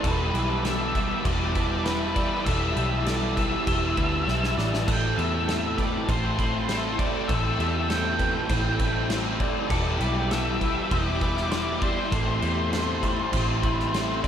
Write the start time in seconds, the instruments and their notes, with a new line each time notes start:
Already playing: analog synth pad A5
0.03 picked electric bass E1, overdriven electric guitar E3 G3 B3 E4, analog synth pad G4 E5 D6, clean electric guitar A4, lead electric guitar B4, kick, crash
0.34 picked electric bass B1, overdriven electric guitar G3 B3 E4, clean electric guitar G4, crash
0.64 overdriven electric guitar E3 G3 B3 E4, clean electric guitar A4, lead electric guitar E5, snare, crash
0.95 overdriven electric guitar G3 B3 E4, clean electric guitar B4, kick, crash
1.25 picked electric bass E1, overdriven electric guitar E3 G3 B3 E4, lead electric guitar D5, clean electric guitar C6, kick, crash
1.55 overdriven electric guitar G3 B3 E4, clean electric guitar B4, kick, crash
1.84 overdriven electric guitar E3 G3 B3 E4, lead electric guitar B4, clean electric guitar B4, snare, crash
2.15 overdriven electric guitar G3 B3 E4, clean electric guitar D5, kick, crash
2.45 picked electric bass E1, overdriven electric guitar E3 G3 B3 E4, clean electric guitar A4, lead electric guitar E5, analog synth pad E6, kick, crash
2.76 picked electric bass B1, overdriven electric guitar G3 B3 E4, clean electric guitar G4, crash
3.06 overdriven electric guitar E3 G3 B3 E4, clean electric guitar A4, lead electric guitar D5, snare, crash
3.36 overdriven electric guitar G3 B3 E4, clean electric guitar B4, lead electric guitar E5, kick, crash
3.67 picked electric bass E1, overdriven electric guitar E3 G3 B3 E4, clean electric guitar C6, kick, crash
3.97 picked electric bass D2, overdriven electric guitar G3 B3 E4, clean electric guitar B4, kick, crash
4.27 picked electric bass B1, overdriven electric guitar E3 G3 B3 E4, clean electric guitar C6, snare
4.44 snare
4.57 picked electric bass A1, overdriven electric guitar G3 B3 E4, clean electric guitar D5, snare
4.74 snare
4.87 picked electric bass A1, overdriven electric guitar A2 E3 A3 C4 E4, clean electric guitar A4, analog synth pad A4 G5, lead electric guitar G5, kick, crash
5.17 picked electric bass E2, overdriven electric guitar A3 C4 E4, clean electric guitar G4, lead electric guitar E5, crash
5.48 overdriven electric guitar E3 A3 C4 E4, clean electric guitar A4, snare, crash
5.77 overdriven electric guitar A3 C4 E4, clean electric guitar B4, lead electric guitar D5, kick, crash
6.08 picked electric bass A1, overdriven electric guitar A2 E3 A3 C4 E4, lead electric guitar C5, clean electric guitar C5, kick, crash
6.38 overdriven electric guitar A3 C4 E4, clean electric guitar B5, kick, crash
6.68 overdriven electric guitar E3 A3 C4 E4, clean electric guitar C5, snare, crash
6.99 overdriven electric guitar A3 C4 E4, clean electric guitar D5, lead electric guitar D5, kick, crash
7.28 picked electric bass A1, overdriven electric guitar A2 E3 A3 C4 E4, clean electric guitar A4, lead electric guitar E5, kick, crash
7.59 picked electric bass E2, overdriven electric guitar A3 C4 E4, clean electric guitar G4, crash
7.89 overdriven electric guitar E3 A3 C4 E4, clean electric guitar A4, lead electric guitar G5, snare, crash
8.19 overdriven electric guitar A3 C4 E4, clean electric guitar B4, kick, crash
8.49 picked electric bass A1, overdriven electric guitar A2 E3 A3 C4 E4, clean electric guitar C5, kick, crash
8.79 overdriven electric guitar A3 C4 E4, clean electric guitar B4, kick, crash
9.09 overdriven electric guitar E3 A3 C4 E4, clean electric guitar C5, snare, crash
9.40 overdriven electric guitar A3 C4 E4, clean electric guitar D5, kick, crash
9.70 picked electric bass E1, overdriven electric guitar E3 G3 B3 E4, analog synth pad G4 E5 G5 D6, clean electric guitar A4, lead electric guitar D5, kick, crash
9.99 picked electric bass B1, overdriven electric guitar G3 B3 E4, clean electric guitar G4, crash
10.30 overdriven electric guitar E3 G3 B3 E4, clean electric guitar A4, lead electric guitar E5, snare, crash
10.61 overdriven electric guitar G3 B3 E4, clean electric guitar B4, kick, crash
10.90 picked electric bass E1, overdriven electric guitar E3 G3 B3 E4, lead electric guitar D5, clean electric guitar C6, kick, crash
11.21 overdriven electric guitar G3 B3 E4, clean electric guitar B4, kick, crash
11.37 snare
11.51 overdriven electric guitar E3 G3 B3 E4, clean electric guitar C6, snare, crash
11.81 overdriven electric guitar G3 B3 E4, lead electric guitar C5, clean electric guitar D5, kick, crash
12.12 picked electric bass A1, overdriven electric guitar A2 E3 A3 C4 E4, analog synth pad G4 C5 A5, clean electric guitar A4, kick, crash
12.42 picked electric bass E2, overdriven electric guitar A3 C4 E4, clean electric guitar G4, crash
12.72 overdriven electric guitar E3 A3 C4 E4, clean electric guitar A4, snare, crash
13.03 overdriven electric guitar A3 C4 E4, clean electric guitar B5, kick, crash
13.32 picked electric bass A1, overdriven electric guitar A2 E3 A3 C4 E4, clean electric guitar C5, kick, crash
13.63 overdriven electric guitar A3 C4 E4, clean electric guitar B5, kick, crash
13.80 snare
13.93 overdriven electric guitar E3 A3 C4 E4, clean electric guitar C5, snare, crash
14.23 overdriven electric guitar C4 E4, clean electric guitar D5, kick, crash